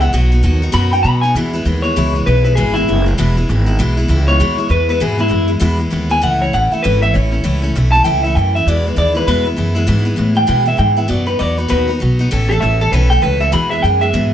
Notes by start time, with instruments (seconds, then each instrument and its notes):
Already playing: upright bass C#2
0.00 steel-string acoustic guitar E3 G#3 B3 E4, clean electric guitar F#5
0.13 upright bass B1, steel-string acoustic guitar B2 F#3 B3 D#4 F#4
0.32 steel-string acoustic guitar B3 D#4 F#4
0.43 upright bass D#2, steel-string acoustic guitar F#3 B3 D#4 F#4
0.62 steel-string acoustic guitar B3 D#4 F#4
0.72 upright bass F#2, steel-string acoustic guitar B2 F#3 B3 D#4 F#4, clean electric guitar B5
0.93 steel-string acoustic guitar B3 D#4 F#4, clean electric guitar G5
1.03 upright bass B2, steel-string acoustic guitar F#3 B3 D#4 F#4, clean electric guitar B5
1.21 steel-string acoustic guitar B3 D#4 F#4, clean electric guitar G#5
1.35 upright bass E2, steel-string acoustic guitar E2 B2 E3 G#3 B3 E4
1.53 steel-string acoustic guitar E3 G#3 B3 E4
1.65 upright bass D#2, steel-string acoustic guitar E3 G#3 B3 E4
1.82 steel-string acoustic guitar E3 G#3 B3 E4, clean electric guitar C#5
1.96 upright bass C#2, steel-string acoustic guitar E2 B2 E3 G#3 B3 E4
2.15 steel-string acoustic guitar E3 G#3 B3 E4
2.26 upright bass B1, steel-string acoustic guitar E3 G#3 B3 E4, clean electric guitar B4
2.44 steel-string acoustic guitar E3 G#3 B3 E4, clean electric guitar B4
2.55 upright bass G#1, steel-string acoustic guitar E2 B2 E3 G#3 B3 E4, clean electric guitar G#4
2.74 steel-string acoustic guitar E3 G#3 B3 E4, clean electric guitar E4
2.88 upright bass F#1, steel-string acoustic guitar E3 G#3 B3 E4
3.06 steel-string acoustic guitar E3 G#3 B3 E4
3.18 upright bass E1, steel-string acoustic guitar E2 B2 E3 G#3 B3 E4
3.37 steel-string acoustic guitar E3 G#3 B3 E4
3.49 upright bass G#1, steel-string acoustic guitar E3 G#3 B3 E4
3.66 steel-string acoustic guitar E3 G#3 B3 E4
3.79 upright bass B1, steel-string acoustic guitar E2 B2 E3 G#3 B3 E4
3.97 steel-string acoustic guitar E3 G#3 B3 E4
4.08 upright bass C#2, steel-string acoustic guitar E3 G#3 B3 E4
4.27 steel-string acoustic guitar E3 G#3 B3 E4, clean electric guitar C#5
4.40 upright bass D#2, steel-string acoustic guitar E2 B2 E3 G#3 B3 E4
4.58 steel-string acoustic guitar E3 G#3 B3 E4
4.69 upright bass E2, steel-string acoustic guitar E3 G#3 B3 E4, clean electric guitar B4
4.89 steel-string acoustic guitar E3 G#3 B3 E4, clean electric guitar B4
5.00 steel-string acoustic guitar E2 B2 E3 G#3 B3 E4, upright bass G#2, clean electric guitar G#4
5.18 steel-string acoustic guitar E3 G#3 B3 E4, clean electric guitar E4
5.28 upright bass F#2, steel-string acoustic guitar E3 G#3 B3 E4
5.48 steel-string acoustic guitar E3 G#3 B3 E4
5.60 steel-string acoustic guitar E2 B2 E3 G#3 B3 E4, upright bass E2
5.79 steel-string acoustic guitar E3 G#3 B3 E4
5.90 upright bass D#2, steel-string acoustic guitar E3 G#3 B3 E4
6.10 steel-string acoustic guitar E3 G#3 B3 E4, clean electric guitar G#5
6.21 upright bass C#2, steel-string acoustic guitar A2 E3 A3 C#4 E4, clean electric guitar F#5
6.41 steel-string acoustic guitar A3 C#4 E4, clean electric guitar C#5
6.53 upright bass A1, steel-string acoustic guitar E3 A3 C#4 E4, clean electric guitar F#5
6.72 steel-string acoustic guitar A3 C#4 E4, clean electric guitar E5, muted upright bass stroke
6.83 upright bass G#1, steel-string acoustic guitar A2 E3 A3 C#4 E4, clean electric guitar B4
7.02 steel-string acoustic guitar A3 C#4 E4, clean electric guitar E5
7.14 upright bass A1, steel-string acoustic guitar E3 A3 C#4 E4, clean electric guitar C#5
7.31 steel-string acoustic guitar A3 C#4 E4
7.44 upright bass C#2, steel-string acoustic guitar A2 E3 A3 C#4 E4
7.62 steel-string acoustic guitar A3 C#4 E4
7.75 upright bass B1, steel-string acoustic guitar E3 A3 C#4 E4
7.92 steel-string acoustic guitar A3 C#4 E4, clean electric guitar A5
8.04 upright bass C#2, steel-string acoustic guitar A2 E3 A3 C#4 E4, clean electric guitar G5
8.23 steel-string acoustic guitar A3 C#4 E4, clean electric guitar E5
8.35 upright bass F#2, steel-string acoustic guitar E3 A3 C#4 E4, clean electric guitar G5
8.55 steel-string acoustic guitar A3 C#4 E4, clean electric guitar E5
8.67 upright bass E2, steel-string acoustic guitar E2 B2 E3 G#3 B3 E4, clean electric guitar D5
8.86 steel-string acoustic guitar E3 G#3 B3 E4, clean electric guitar B4
8.96 upright bass D#2, steel-string acoustic guitar E3 G#3 B3 E4, clean electric guitar D5
9.15 steel-string acoustic guitar E3 G#3 B3 E4, clean electric guitar B4
9.27 upright bass E2, steel-string acoustic guitar E2 B2 E3 G#3 B3 E4, clean electric guitar B4
9.44 steel-string acoustic guitar E3 G#3 B3 E4
9.56 upright bass F#2, steel-string acoustic guitar E3 G#3 B3 E4
9.75 steel-string acoustic guitar E3 G#3 B3 E4
9.87 steel-string acoustic guitar E2 B2 E3 G#3 B3 E4, upright bass G#2
10.05 steel-string acoustic guitar E3 G#3 B3 E4
10.16 upright bass A2, steel-string acoustic guitar E3 G#3 B3 E4
10.35 steel-string acoustic guitar E3 G#3 B3 E4, clean electric guitar G5
10.47 steel-string acoustic guitar E2 B2 E3 G#3 B3 E4, upright bass B2, clean electric guitar G5
10.65 steel-string acoustic guitar E3 G#3 B3 E4, clean electric guitar E5
10.77 upright bass G#2, steel-string acoustic guitar E3 G#3 B3 E4, clean electric guitar G5
10.97 steel-string acoustic guitar E3 G#3 B3 E4, clean electric guitar E5
11.08 upright bass F#2, steel-string acoustic guitar B2 F#3 B3 D#4 F#4, clean electric guitar D5
11.26 steel-string acoustic guitar B3 D#4 F#4, clean electric guitar B4
11.39 upright bass E2, steel-string acoustic guitar F#3 B3 D#4 F#4, clean electric guitar D5
11.58 steel-string acoustic guitar B3 D#4 F#4, clean electric guitar B4
11.68 upright bass D#2, steel-string acoustic guitar B2 F#3 B3 D#4 F#4, clean electric guitar B4
11.88 steel-string acoustic guitar B3 D#4 F#4
12.00 upright bass B1, steel-string acoustic guitar F#3 B3 D#4 F#4
12.19 steel-string acoustic guitar B3 D#4 F#4
12.31 upright bass A1, steel-string acoustic guitar A2 E3 A3 C#4 A4
12.49 steel-string acoustic guitar A3 C#4 A4, clean electric guitar A4
12.60 upright bass A1, steel-string acoustic guitar E3 A3 C#4 A4, clean electric guitar E5
12.81 steel-string acoustic guitar A3 C#4 A4, clean electric guitar A4
12.92 upright bass B1, steel-string acoustic guitar A2 E3 A3 C#4 A4, clean electric guitar B4
13.10 steel-string acoustic guitar A3 C#4 A4, clean electric guitar G5
13.22 upright bass C#2, steel-string acoustic guitar E3 A3 C#4 A4, clean electric guitar B4
13.40 steel-string acoustic guitar A3 C#4 A4, clean electric guitar E5
13.52 steel-string acoustic guitar E2 B2 E3 G#3 B3 G#4, upright bass E2, clean electric guitar B5
13.70 steel-string acoustic guitar E3 G#3 B3 G#4, clean electric guitar E5
13.82 upright bass F#2, steel-string acoustic guitar E3 G#3 B3 G#4, clean electric guitar G5
14.01 steel-string acoustic guitar E3 G#3 B3 G#4, clean electric guitar E5
14.13 steel-string acoustic guitar E2 B2 E3 G#3 B3 G#4, upright bass G#2